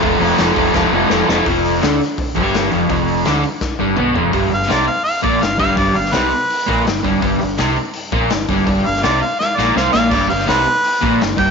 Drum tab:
CC |----------------|----------------|----------------|----------------|
HH |o-o-o-o---------|o-o-o-o-o-o-o-o-|o-o-o-o---------|o-o-o-o-o-o-o-o-|
SD |----o---o---o-o-|----o-o-----o---|----o---o-------|---oo-------o---|
T2 |----------------|----------------|------------o---|----------------|
FT |----------------|----------------|--------------o-|----------------|
BD |o-----o-o-------|o-------o-o-----|o-------o-------|o---------o---o-|

CC |----------------|----------------|----------------|x---------------|
HH |o-o-o-o-o-o-o-o-|o-o-o-o-o-o-o-o-|o-o-o-o---------|--o-o-o-o-o-o-o-|
SD |---oo-------oo--|----o-------oo--|---oo---o-o-o-o-|---oo-------oo--|
T2 |----------------|----------------|----------------|----------------|
FT |----------------|----------------|----------------|----------------|
BD |o---------o---o-|o---------o---o-|o---------------|o---------o---o-|